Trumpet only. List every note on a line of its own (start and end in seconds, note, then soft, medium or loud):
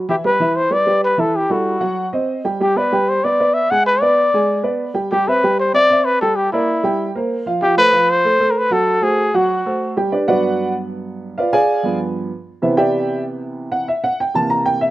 0.09 0.16 G4 medium
0.26 0.58 B4 medium
0.57 0.74 C5 medium
0.73 1.03 D5 loud
1.04 1.21 B4 medium
1.20 1.38 A4 medium
1.36 1.53 G4 medium
1.51 2.13 F#4 medium
2.62 2.79 G4 medium
2.77 3.11 B4 medium
3.09 3.26 C5 medium
3.24 3.56 D5 medium
3.54 3.72 E5 medium
3.70 3.86 F#5 medium
3.86 4.03 B4 medium
4.01 4.64 D5 medium
5.12 5.29 G4 medium
5.28 5.59 B4 loud
5.59 5.73 C5 medium
5.74 6.06 D5 loud
6.05 6.20 B4 medium
6.21 6.37 A4 medium
6.36 6.52 G4 medium
6.52 7.11 E4 medium
7.62 7.76 G4 medium
7.78 8.12 B4 loud
8.10 8.52 C5 loud
8.51 8.60 A#4 medium
8.58 8.74 B4 medium
8.73 9.05 A4 medium
9.03 9.37 G#4 medium
9.36 9.97 F#4 medium